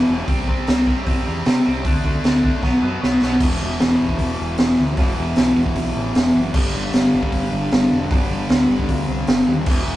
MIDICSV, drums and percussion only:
0, 0, Header, 1, 2, 480
1, 0, Start_track
1, 0, Key_signature, 1, "minor"
1, 0, Tempo, 391389
1, 341, Time_signature, 4, 2, 24, 8
1, 12219, End_track
2, 0, Start_track
2, 0, Title_t, "Drums"
2, 339, Note_on_c, 9, 46, 56
2, 342, Note_on_c, 9, 36, 116
2, 461, Note_off_c, 9, 46, 0
2, 465, Note_off_c, 9, 36, 0
2, 582, Note_on_c, 9, 36, 87
2, 705, Note_off_c, 9, 36, 0
2, 823, Note_on_c, 9, 46, 59
2, 836, Note_on_c, 9, 38, 113
2, 945, Note_off_c, 9, 46, 0
2, 959, Note_off_c, 9, 38, 0
2, 1066, Note_on_c, 9, 36, 75
2, 1189, Note_off_c, 9, 36, 0
2, 1305, Note_on_c, 9, 46, 63
2, 1308, Note_on_c, 9, 36, 113
2, 1427, Note_off_c, 9, 46, 0
2, 1430, Note_off_c, 9, 36, 0
2, 1781, Note_on_c, 9, 46, 61
2, 1795, Note_on_c, 9, 38, 122
2, 1904, Note_off_c, 9, 46, 0
2, 1917, Note_off_c, 9, 38, 0
2, 2264, Note_on_c, 9, 46, 63
2, 2267, Note_on_c, 9, 36, 115
2, 2387, Note_off_c, 9, 46, 0
2, 2389, Note_off_c, 9, 36, 0
2, 2505, Note_on_c, 9, 36, 77
2, 2628, Note_off_c, 9, 36, 0
2, 2744, Note_on_c, 9, 46, 57
2, 2758, Note_on_c, 9, 38, 112
2, 2867, Note_off_c, 9, 46, 0
2, 2881, Note_off_c, 9, 38, 0
2, 2985, Note_on_c, 9, 36, 88
2, 3108, Note_off_c, 9, 36, 0
2, 3222, Note_on_c, 9, 36, 99
2, 3237, Note_on_c, 9, 38, 58
2, 3345, Note_off_c, 9, 36, 0
2, 3359, Note_off_c, 9, 38, 0
2, 3720, Note_on_c, 9, 38, 90
2, 3843, Note_off_c, 9, 38, 0
2, 3946, Note_on_c, 9, 38, 92
2, 4069, Note_off_c, 9, 38, 0
2, 4172, Note_on_c, 9, 49, 127
2, 4175, Note_on_c, 9, 36, 127
2, 4295, Note_off_c, 9, 49, 0
2, 4298, Note_off_c, 9, 36, 0
2, 4651, Note_on_c, 9, 46, 73
2, 4665, Note_on_c, 9, 38, 125
2, 4774, Note_off_c, 9, 46, 0
2, 4787, Note_off_c, 9, 38, 0
2, 5015, Note_on_c, 9, 36, 87
2, 5132, Note_on_c, 9, 46, 70
2, 5137, Note_off_c, 9, 36, 0
2, 5137, Note_on_c, 9, 36, 91
2, 5254, Note_off_c, 9, 46, 0
2, 5260, Note_off_c, 9, 36, 0
2, 5610, Note_on_c, 9, 46, 66
2, 5624, Note_on_c, 9, 38, 124
2, 5733, Note_off_c, 9, 46, 0
2, 5747, Note_off_c, 9, 38, 0
2, 6092, Note_on_c, 9, 46, 75
2, 6100, Note_on_c, 9, 36, 126
2, 6214, Note_off_c, 9, 46, 0
2, 6222, Note_off_c, 9, 36, 0
2, 6568, Note_on_c, 9, 46, 69
2, 6582, Note_on_c, 9, 38, 114
2, 6691, Note_off_c, 9, 46, 0
2, 6704, Note_off_c, 9, 38, 0
2, 6942, Note_on_c, 9, 36, 97
2, 7057, Note_on_c, 9, 46, 64
2, 7063, Note_off_c, 9, 36, 0
2, 7063, Note_on_c, 9, 36, 93
2, 7180, Note_off_c, 9, 46, 0
2, 7185, Note_off_c, 9, 36, 0
2, 7540, Note_on_c, 9, 46, 67
2, 7554, Note_on_c, 9, 38, 117
2, 7663, Note_off_c, 9, 46, 0
2, 7676, Note_off_c, 9, 38, 0
2, 8019, Note_on_c, 9, 49, 120
2, 8022, Note_on_c, 9, 36, 125
2, 8142, Note_off_c, 9, 49, 0
2, 8145, Note_off_c, 9, 36, 0
2, 8495, Note_on_c, 9, 46, 67
2, 8508, Note_on_c, 9, 38, 113
2, 8617, Note_off_c, 9, 46, 0
2, 8631, Note_off_c, 9, 38, 0
2, 8863, Note_on_c, 9, 36, 94
2, 8978, Note_on_c, 9, 46, 70
2, 8982, Note_off_c, 9, 36, 0
2, 8982, Note_on_c, 9, 36, 106
2, 9101, Note_off_c, 9, 46, 0
2, 9104, Note_off_c, 9, 36, 0
2, 9459, Note_on_c, 9, 46, 73
2, 9473, Note_on_c, 9, 38, 124
2, 9582, Note_off_c, 9, 46, 0
2, 9596, Note_off_c, 9, 38, 0
2, 9938, Note_on_c, 9, 46, 78
2, 9944, Note_on_c, 9, 36, 127
2, 10061, Note_off_c, 9, 46, 0
2, 10067, Note_off_c, 9, 36, 0
2, 10412, Note_on_c, 9, 46, 70
2, 10426, Note_on_c, 9, 38, 112
2, 10535, Note_off_c, 9, 46, 0
2, 10548, Note_off_c, 9, 38, 0
2, 10785, Note_on_c, 9, 36, 90
2, 10898, Note_on_c, 9, 46, 62
2, 10902, Note_off_c, 9, 36, 0
2, 10902, Note_on_c, 9, 36, 109
2, 11020, Note_off_c, 9, 46, 0
2, 11024, Note_off_c, 9, 36, 0
2, 11371, Note_on_c, 9, 46, 66
2, 11384, Note_on_c, 9, 38, 123
2, 11493, Note_off_c, 9, 46, 0
2, 11507, Note_off_c, 9, 38, 0
2, 11849, Note_on_c, 9, 49, 116
2, 11858, Note_on_c, 9, 36, 124
2, 11972, Note_off_c, 9, 49, 0
2, 11980, Note_off_c, 9, 36, 0
2, 12219, End_track
0, 0, End_of_file